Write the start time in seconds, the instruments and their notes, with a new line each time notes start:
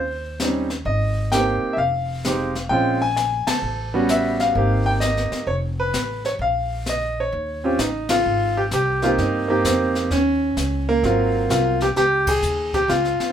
Already playing: upright bass D#2, grand piano C5
0.40 grand piano G3 C4 C#4 D#4, snare, hi-hat pedal
0.70 snare
0.85 upright bass G#1, grand piano D#5, brush sweep
1.32 grand piano A#3 C4 D#4 G4 G5, snare, hi-hat pedal
1.73 upright bass F1, grand piano E5
1.78 grand piano F5, brush sweep
2.25 grand piano G#3 C4 D#4 G4, snare, hi-hat pedal
2.55 snare
2.69 upright bass A#1, grand piano G#3 C4 C#4 F4 G5, brush sweep
3.02 grand piano G#5
3.17 grand piano G#5, snare, hi-hat pedal
3.47 grand piano A5, muted upright bass stroke, snare, ride
3.62 upright bass A1, brush sweep
3.94 grand piano G3 B3 C#4 F#4
4.09 grand piano E5, snare, hi-hat pedal
4.40 grand piano F5, snare
4.55 upright bass G#1, grand piano A#3 C4 D#4 G4, brush sweep
4.86 grand piano G5
5.00 grand piano D#5, snare, hi-hat pedal
5.17 snare
5.31 muted upright bass stroke, snare
5.47 upright bass F1, grand piano C#5, brush sweep
5.80 grand piano B4
5.93 upright bass A1, snare, hi-hat pedal
6.25 grand piano C#5, snare
6.39 upright bass A#1, grand piano F5, brush sweep
6.86 grand piano D#5, snare, hi-hat pedal
7.20 grand piano C#5
7.32 upright bass D#2, brush sweep
7.64 grand piano C4 C#4 F4 G4
7.79 upright bass A1, grand piano D#4, snare, hi-hat pedal
8.09 grand piano F4, snare, ride
8.25 upright bass G#1, brush sweep
8.57 grand piano G4
8.71 upright bass C2, grand piano G4, snare, hi-hat pedal
9.02 grand piano A#3 C4 D#4 F4 G4, snare
9.18 upright bass G2, grand piano D#4, brush sweep, snare
9.48 grand piano A#3 C4 D#4 G4
9.64 upright bass F2, grand piano C4, snare, hi-hat pedal
9.95 snare
10.10 upright bass D#2, grand piano C#4, brush sweep, snare
10.57 upright bass C#2, snare, hi-hat pedal
10.89 grand piano A#3
11.03 upright bass G#1, grand piano F#3 A#3 C4 F4, brush sweep, snare
11.49 upright bass C2, grand piano F4, snare, hi-hat pedal
11.81 grand piano G4, snare
11.96 upright bass C#2, grand piano G4, brush sweep, snare
12.27 grand piano G#4, kick, ride
12.42 upright bass D#2, hi-hat pedal
12.74 grand piano G4, kick, snare
12.88 upright bass C#2, grand piano F4, brush sweep, snare
13.05 snare
13.19 muted upright bass stroke, snare